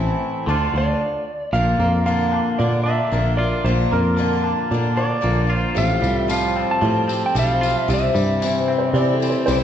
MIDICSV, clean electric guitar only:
0, 0, Header, 1, 2, 480
1, 0, Start_track
1, 0, Tempo, 529568
1, 1389, Time_signature, 4, 2, 24, 8
1, 8732, End_track
2, 0, Start_track
2, 0, Title_t, "Clean electric guitar"
2, 0, Program_c, 0, 27
2, 0, Note_on_c, 0, 45, 75
2, 0, Note_on_c, 0, 52, 78
2, 0, Note_on_c, 0, 57, 74
2, 0, Note_on_c, 0, 60, 87
2, 0, Note_on_c, 0, 64, 78
2, 410, Note_off_c, 0, 45, 0
2, 416, Note_off_c, 0, 52, 0
2, 419, Note_off_c, 0, 57, 0
2, 421, Note_on_c, 0, 50, 73
2, 424, Note_off_c, 0, 60, 0
2, 429, Note_off_c, 0, 64, 0
2, 433, Note_on_c, 0, 57, 77
2, 445, Note_on_c, 0, 62, 80
2, 456, Note_on_c, 0, 65, 80
2, 890, Note_off_c, 0, 50, 0
2, 897, Note_off_c, 0, 57, 0
2, 903, Note_off_c, 0, 62, 0
2, 908, Note_off_c, 0, 65, 0
2, 1385, Note_on_c, 0, 46, 66
2, 1630, Note_on_c, 0, 58, 64
2, 1867, Note_on_c, 0, 50, 62
2, 2099, Note_on_c, 0, 62, 60
2, 2346, Note_off_c, 0, 50, 0
2, 2357, Note_on_c, 0, 50, 69
2, 2581, Note_off_c, 0, 62, 0
2, 2587, Note_off_c, 0, 46, 0
2, 2591, Note_on_c, 0, 62, 64
2, 2822, Note_off_c, 0, 58, 0
2, 2833, Note_on_c, 0, 58, 56
2, 3068, Note_on_c, 0, 65, 71
2, 3306, Note_on_c, 0, 46, 67
2, 3536, Note_off_c, 0, 58, 0
2, 3547, Note_on_c, 0, 58, 69
2, 3553, Note_off_c, 0, 50, 0
2, 3775, Note_on_c, 0, 50, 68
2, 3790, Note_off_c, 0, 62, 0
2, 4023, Note_on_c, 0, 62, 64
2, 4258, Note_off_c, 0, 50, 0
2, 4269, Note_on_c, 0, 50, 68
2, 4489, Note_off_c, 0, 62, 0
2, 4500, Note_on_c, 0, 62, 63
2, 4507, Note_off_c, 0, 46, 0
2, 4726, Note_off_c, 0, 58, 0
2, 4737, Note_on_c, 0, 58, 61
2, 4979, Note_off_c, 0, 65, 0
2, 4982, Note_on_c, 0, 65, 76
2, 5207, Note_on_c, 0, 45, 72
2, 5223, Note_off_c, 0, 58, 0
2, 5225, Note_off_c, 0, 62, 0
2, 5226, Note_off_c, 0, 65, 0
2, 5229, Note_off_c, 0, 50, 0
2, 5456, Note_on_c, 0, 55, 66
2, 5702, Note_on_c, 0, 53, 68
2, 5945, Note_on_c, 0, 60, 65
2, 6165, Note_off_c, 0, 53, 0
2, 6175, Note_on_c, 0, 53, 68
2, 6402, Note_off_c, 0, 60, 0
2, 6413, Note_on_c, 0, 60, 62
2, 6418, Note_off_c, 0, 45, 0
2, 6649, Note_off_c, 0, 55, 0
2, 6660, Note_on_c, 0, 55, 62
2, 6899, Note_on_c, 0, 65, 79
2, 7141, Note_off_c, 0, 60, 0
2, 7143, Note_off_c, 0, 53, 0
2, 7145, Note_off_c, 0, 55, 0
2, 7145, Note_off_c, 0, 65, 0
2, 7151, Note_on_c, 0, 48, 76
2, 7383, Note_on_c, 0, 55, 67
2, 7633, Note_on_c, 0, 52, 69
2, 7866, Note_on_c, 0, 60, 63
2, 8095, Note_off_c, 0, 52, 0
2, 8106, Note_on_c, 0, 52, 72
2, 8351, Note_off_c, 0, 48, 0
2, 8353, Note_off_c, 0, 60, 0
2, 8364, Note_on_c, 0, 60, 62
2, 8580, Note_off_c, 0, 55, 0
2, 8591, Note_on_c, 0, 55, 66
2, 8732, Note_off_c, 0, 52, 0
2, 8732, Note_off_c, 0, 55, 0
2, 8732, Note_off_c, 0, 60, 0
2, 8732, End_track
0, 0, End_of_file